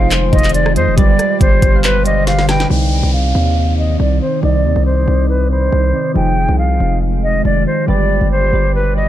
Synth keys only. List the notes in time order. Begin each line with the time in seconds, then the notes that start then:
Already playing: D#4 G#4
0.00 F3 C4 D#4 F4
0.31 F3 C4 D#4 C5
0.96 G3 G4 B4 D5
1.72 G3 G4 B4 F5
2.04 G3 G4 D5
2.69 C3 C4 D#4 D5
3.02 C3 C4 D#4 D5
3.34 C3 C4 D#4 D5
4.41 C3 C4 D#4 D5
5.06 C3 C4 D#4 D5
5.49 C3 C4 D#4 B4
5.92 C3 C4 D#4 D5
6.14 F3 C4 D#4 G#4
6.47 F3 C4 D#4 G#4
6.79 F3 C4 D#4 G#4
7.87 G3 G4 B4 D5
8.52 G3 G4 B4 D5
8.95 G3 G4 B4 D5